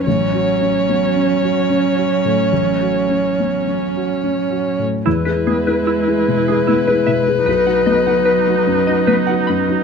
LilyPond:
<<
  \new Staff \with { instrumentName = "Violin" } { \time 3/4 \key e \major \tempo 4 = 74 cis''2.~ | cis''2~ cis''8. r16 | b'2.~ | b'2. | }
  \new Staff \with { instrumentName = "Synth pluck" } { \time 3/4 \key e \major r2. | r2. | e'16 b'16 gis'16 b'16 e'16 r8 gis'16 e'16 b'16 e''16 r16 | b'16 fis''16 dis''16 fis''16 b'16 r8 dis''16 b'16 fis''16 b''16 r16 | }
  \new Staff \with { instrumentName = "Felt piano" } { \time 3/4 \key e \major \tuplet 3/2 { a,,8 fis'8 cis'8 b8 cis'8 fis'8 cis'8 fis'8 a,8 } | \tuplet 3/2 { a,,8 fis'8 cis'8 b8 cis'8 fis'8 cis'8 fis'8 a,8 } | e,16 <e' gis'>16 b16 <e' gis'>8 <e' gis'>16 b,16 <e' gis'>16 b16 <e' gis'>16 b,16 <e' gis'>16 | b,,16 <dis' fis'>16 b16 <dis' fis'>8 <dis' fis'>16 fis,16 <dis' fis'>16 b16 <dis' fis'>16 fis,16 <dis' fis'>16 | }
  \new Staff \with { instrumentName = "Viola" } { \time 3/4 \key e \major cis'2.~ | cis'2~ cis'8. r16 | e'2. | dis'2. | }
  \new Staff \with { instrumentName = "Cello" } { \clef bass \time 3/4 \key e \major fis2.~ | fis2~ fis8. r16 | gis2. | fis2. | }
>>